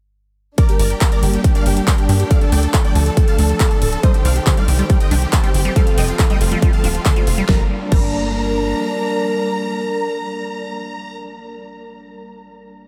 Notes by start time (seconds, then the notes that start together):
0.58 G3 A#3 D4 A#4 D5, kick, closed hi-hat
0.69 G4, closed hi-hat
0.79 G1 A#4 D5, open hi-hat
0.90 G4, closed hi-hat
1.01 G4, kick, clap, closed hi-hat
1.12 A#4 D5, closed hi-hat
1.23 G1 G4, open hi-hat
1.33 G4, closed hi-hat
1.44 G4, kick, closed hi-hat
1.55 D5 F5, closed hi-hat
1.66 G1 G4, open hi-hat
1.77 G4, closed hi-hat
1.87 A#4 G5, kick, clap, closed hi-hat
1.98 G4, closed hi-hat
2.09 G2 G4, open hi-hat
2.20 G4, closed hi-hat
2.30 F3 A3 A4 D5 F5, kick, closed hi-hat
2.41 A4, closed hi-hat
2.52 D2 D5 G5, open hi-hat
2.63 A4, closed hi-hat
2.74 A4, kick, clap, closed hi-hat
2.85 D5 G5, closed hi-hat
2.95 D2 A4, open hi-hat
3.06 A4, closed hi-hat
3.17 A4, kick, closed hi-hat
3.28 F5 A5, closed hi-hat
3.39 D2 A4, open hi-hat
3.49 A4, closed hi-hat
3.60 F5 A5, kick, clap, closed hi-hat
3.71 A4, closed hi-hat
3.82 D1 A4, open hi-hat
3.93 A4, closed hi-hat
4.03 D#3 G3 C4 C5 D#5, kick, closed hi-hat
4.14 G4, closed hi-hat
4.25 C2 G3 D5 F5, open hi-hat
4.36 G4, closed hi-hat
4.47 D3 G4, kick, clap, closed hi-hat
4.57 G3 D5 F5, closed hi-hat
4.68 C2 G4, open hi-hat
4.79 G3 G4, closed hi-hat
4.90 G3 G4, kick, closed hi-hat
5.00 D#5 G5, closed hi-hat
5.11 C2 D4 G4, open hi-hat
5.22 G4, closed hi-hat
5.33 D3 C5 A5, kick, clap, closed hi-hat
5.43 G3 G4, closed hi-hat
5.54 G1 G4, open hi-hat
5.65 G3 G4, closed hi-hat
5.76 F3 G3 A3 A4 F5, kick, closed hi-hat
5.87 F4, closed hi-hat
5.98 F1 G3 D#5 G5, open hi-hat
6.08 F4, closed hi-hat
6.19 D3 F4, kick, clap, closed hi-hat
6.30 G3 D#5 G5, closed hi-hat
6.41 F1 F4 A4, open hi-hat
6.52 G3 F4, closed hi-hat
6.62 G3 F4, kick, closed hi-hat
6.73 F5 A5, closed hi-hat
6.84 D#1 D4 F4, open hi-hat
6.95 F4, closed hi-hat
7.05 D3 A5 C6, kick, clap, closed hi-hat
7.16 G3 F4, closed hi-hat
7.27 F1 F4, open hi-hat
7.38 G3 F4, closed hi-hat
7.49 G1 G3 A#3 D4 A#4 A#5, kick, snare
7.92 G1 G3 A#4 A#5, kick, crash